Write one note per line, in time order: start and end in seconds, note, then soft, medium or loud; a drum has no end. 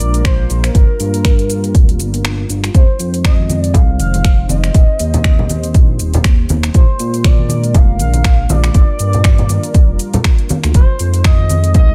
0.00 0.46 A#1 medium
0.00 0.73 G#3 medium
0.00 2.71 A#3 medium
0.00 2.71 D4 medium
0.00 4.71 F4 medium
0.00 2.71 A#4 medium
0.00 0.21 D5 loud
0.00 open hi-hat medium
0.00 shaker medium
0.14 closed hi-hat soft
0.14 shaker medium
0.25 0.71 C5 loud
0.25 finger snap loud
0.25 kick loud
0.25 closed hi-hat medium
0.25 shaker soft
0.50 0.70 A#1 loud
0.50 open hi-hat medium
0.50 shaker medium
0.64 finger snap medium
0.64 closed hi-hat soft
0.64 shaker medium
0.75 0.86 G1 loud
0.75 2.73 G3 medium
0.75 2.21 A#4 loud
0.75 kick loud
0.75 closed hi-hat medium
0.75 shaker soft
1.00 1.76 G2 medium
1.00 open hi-hat medium
1.00 shaker medium
1.14 closed hi-hat soft
1.14 shaker soft
1.25 finger snap loud
1.25 kick loud
1.25 closed hi-hat medium
1.25 shaker soft
1.39 closed hi-hat soft
1.50 open hi-hat medium
1.50 shaker medium
1.64 closed hi-hat soft
1.64 shaker medium
1.75 2.01 D1 loud
1.75 kick loud
1.75 closed hi-hat medium
1.75 shaker soft
1.89 closed hi-hat soft
2.00 2.46 G1 medium
2.00 open hi-hat medium
2.00 shaker medium
2.14 closed hi-hat soft
2.14 shaker medium
2.25 finger snap loud
2.25 closed hi-hat medium
2.25 shaker soft
2.50 2.69 G1 loud
2.50 open hi-hat medium
2.50 shaker medium
2.64 finger snap medium
2.64 closed hi-hat soft
2.64 shaker medium
2.74 2.85 F1 loud
2.74 4.73 G#3 medium
2.74 6.71 C4 medium
2.74 6.71 D#4 medium
2.74 3.21 C5 loud
2.74 6.71 C5 medium
2.74 kick loud
2.74 closed hi-hat medium
2.74 shaker soft
2.99 3.76 F2 medium
2.99 open hi-hat medium
2.99 shaker medium
3.14 closed hi-hat soft
3.14 shaker medium
3.24 3.59 D#5 loud
3.24 finger snap loud
3.24 kick loud
3.24 closed hi-hat medium
3.24 high conga medium
3.24 shaker soft
3.40 high conga medium
3.50 open hi-hat medium
3.50 high conga medium
3.50 shaker loud
3.59 3.76 D5 loud
3.64 closed hi-hat soft
3.64 shaker medium
3.74 4.01 C2 loud
3.74 3.99 F5 loud
3.74 kick loud
3.74 closed hi-hat medium
3.74 low conga loud
3.74 shaker soft
4.00 4.46 F1 medium
4.00 4.46 F5 loud
4.00 open hi-hat medium
4.00 high conga medium
4.00 shaker medium
4.14 closed hi-hat soft
4.14 high conga medium
4.14 shaker medium
4.25 finger snap loud
4.25 kick loud
4.25 closed hi-hat medium
4.25 shaker soft
4.49 4.70 F1 loud
4.49 6.46 D#5 loud
4.49 open hi-hat medium
4.49 high conga loud
4.49 shaker medium
4.64 finger snap medium
4.64 closed hi-hat soft
4.64 shaker medium
4.74 4.85 D#1 loud
4.74 6.72 A#3 medium
4.74 6.73 G4 medium
4.74 kick loud
4.74 closed hi-hat medium
4.74 shaker soft
4.99 5.76 D#2 medium
4.99 open hi-hat loud
4.99 shaker loud
5.14 closed hi-hat soft
5.14 low conga medium
5.14 shaker medium
5.24 finger snap loud
5.24 kick loud
5.24 closed hi-hat medium
5.24 high conga medium
5.24 shaker soft
5.39 high conga medium
5.39 low conga medium
5.49 open hi-hat medium
5.49 high conga medium
5.49 shaker loud
5.63 closed hi-hat soft
5.63 shaker medium
5.74 6.01 A#1 loud
5.74 kick loud
5.74 closed hi-hat medium
5.74 high conga medium
5.74 shaker soft
5.99 6.45 D#1 medium
5.99 open hi-hat medium
5.99 shaker loud
6.14 closed hi-hat soft
6.14 low conga medium
6.14 shaker medium
6.24 finger snap loud
6.24 kick loud
6.24 closed hi-hat medium
6.24 shaker soft
6.49 6.70 D#1 loud
6.49 open hi-hat medium
6.49 high conga loud
6.49 shaker loud
6.63 finger snap medium
6.63 closed hi-hat soft
6.63 shaker medium
6.74 6.85 A#1 loud
6.74 8.73 G#3 medium
6.74 10.71 A#3 medium
6.74 10.71 D4 medium
6.74 11.95 F4 medium
6.74 8.73 A#4 medium
6.74 7.27 C5 loud
6.74 kick loud
6.74 closed hi-hat medium
6.74 shaker soft
6.99 7.76 A#2 medium
6.99 open hi-hat medium
6.99 shaker loud
7.14 closed hi-hat soft
7.14 shaker medium
7.24 7.77 D5 loud
7.24 finger snap loud
7.24 kick loud
7.24 closed hi-hat medium
7.24 high conga medium
7.24 shaker soft
7.39 high conga medium
7.49 open hi-hat medium
7.49 high conga medium
7.49 shaker loud
7.64 closed hi-hat soft
7.64 shaker medium
7.74 8.01 F1 loud
7.74 8.00 F5 loud
7.74 kick loud
7.74 closed hi-hat medium
7.74 low conga loud
7.74 shaker soft
7.99 8.46 A#1 medium
7.99 8.51 F5 loud
7.99 open hi-hat medium
7.99 high conga medium
7.99 shaker medium
8.14 closed hi-hat soft
8.14 high conga medium
8.14 shaker medium
8.24 finger snap loud
8.24 kick loud
8.24 closed hi-hat medium
8.24 shaker soft
8.49 8.70 A#1 loud
8.49 10.50 D5 loud
8.49 open hi-hat medium
8.49 high conga loud
8.49 shaker loud
8.64 finger snap medium
8.64 closed hi-hat soft
8.64 shaker medium
8.74 8.85 G1 loud
8.74 10.73 G3 medium
8.74 10.73 A#4 medium
8.74 kick loud
8.74 closed hi-hat medium
8.74 shaker soft
8.99 9.58 G2 medium
8.99 open hi-hat medium
8.99 shaker loud
9.13 closed hi-hat soft
9.13 low conga medium
9.13 shaker medium
9.24 finger snap loud
9.24 kick loud
9.24 closed hi-hat medium
9.24 high conga medium
9.24 shaker soft
9.38 closed hi-hat soft
9.38 high conga medium
9.38 low conga medium
9.49 open hi-hat medium
9.49 high conga medium
9.49 shaker loud
9.63 closed hi-hat soft
9.63 shaker medium
9.74 kick loud
9.74 closed hi-hat medium
9.74 high conga medium
9.74 shaker soft
9.89 9.97 F1 medium
9.99 open hi-hat medium
9.99 shaker loud
10.14 closed hi-hat soft
10.14 low conga loud
10.14 shaker medium
10.24 finger snap loud
10.24 kick loud
10.24 closed hi-hat medium
10.24 shaker soft
10.39 closed hi-hat soft
10.49 open hi-hat medium
10.49 high conga loud
10.49 shaker loud
10.64 10.72 D2 medium
10.64 finger snap medium
10.64 closed hi-hat soft
10.64 shaker medium
10.74 10.85 F1 loud
10.74 11.95 G#3 medium
10.74 11.95 C4 medium
10.74 11.95 D#4 medium
10.74 11.95 C5 medium
10.74 11.21 C5 loud
10.74 kick loud
10.74 closed hi-hat medium
10.74 shaker soft
10.99 11.76 F2 medium
10.99 open hi-hat medium
10.99 shaker loud
11.14 closed hi-hat soft
11.14 shaker medium
11.24 11.72 D#5 loud
11.24 finger snap loud
11.24 kick loud
11.24 closed hi-hat medium
11.24 high conga medium
11.24 shaker soft
11.39 high conga medium
11.49 open hi-hat medium
11.49 high conga medium
11.49 shaker loud
11.64 closed hi-hat soft
11.64 shaker medium
11.74 11.95 C2 loud
11.74 11.95 D#5 loud
11.74 kick loud
11.74 closed hi-hat medium
11.74 low conga medium
11.74 shaker soft